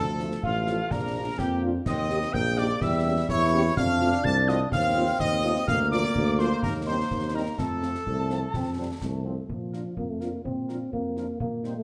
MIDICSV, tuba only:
0, 0, Header, 1, 2, 480
1, 0, Start_track
1, 0, Key_signature, -2, "major"
1, 0, Tempo, 476948
1, 918, Time_signature, 2, 2, 24, 8
1, 11906, End_track
2, 0, Start_track
2, 0, Title_t, "Tuba"
2, 0, Program_c, 0, 58
2, 0, Note_on_c, 0, 38, 79
2, 356, Note_off_c, 0, 38, 0
2, 437, Note_on_c, 0, 33, 85
2, 837, Note_off_c, 0, 33, 0
2, 911, Note_on_c, 0, 34, 81
2, 1314, Note_off_c, 0, 34, 0
2, 1388, Note_on_c, 0, 41, 93
2, 1792, Note_off_c, 0, 41, 0
2, 1872, Note_on_c, 0, 39, 90
2, 2273, Note_off_c, 0, 39, 0
2, 2353, Note_on_c, 0, 34, 102
2, 2754, Note_off_c, 0, 34, 0
2, 2831, Note_on_c, 0, 40, 91
2, 3232, Note_off_c, 0, 40, 0
2, 3308, Note_on_c, 0, 40, 97
2, 3710, Note_off_c, 0, 40, 0
2, 3789, Note_on_c, 0, 41, 100
2, 4191, Note_off_c, 0, 41, 0
2, 4269, Note_on_c, 0, 36, 107
2, 4670, Note_off_c, 0, 36, 0
2, 4752, Note_on_c, 0, 39, 97
2, 5152, Note_off_c, 0, 39, 0
2, 5228, Note_on_c, 0, 39, 96
2, 5629, Note_off_c, 0, 39, 0
2, 5709, Note_on_c, 0, 38, 89
2, 6110, Note_off_c, 0, 38, 0
2, 6188, Note_on_c, 0, 38, 106
2, 6589, Note_off_c, 0, 38, 0
2, 6671, Note_on_c, 0, 39, 88
2, 7070, Note_off_c, 0, 39, 0
2, 7149, Note_on_c, 0, 39, 85
2, 7549, Note_off_c, 0, 39, 0
2, 7632, Note_on_c, 0, 41, 69
2, 8031, Note_off_c, 0, 41, 0
2, 8111, Note_on_c, 0, 36, 78
2, 8510, Note_off_c, 0, 36, 0
2, 8590, Note_on_c, 0, 41, 68
2, 8990, Note_off_c, 0, 41, 0
2, 9069, Note_on_c, 0, 36, 78
2, 9470, Note_off_c, 0, 36, 0
2, 9546, Note_on_c, 0, 46, 54
2, 9908, Note_off_c, 0, 46, 0
2, 10029, Note_on_c, 0, 41, 56
2, 10431, Note_off_c, 0, 41, 0
2, 10512, Note_on_c, 0, 46, 47
2, 10913, Note_off_c, 0, 46, 0
2, 10995, Note_on_c, 0, 41, 55
2, 11396, Note_off_c, 0, 41, 0
2, 11473, Note_on_c, 0, 46, 52
2, 11876, Note_off_c, 0, 46, 0
2, 11906, End_track
0, 0, End_of_file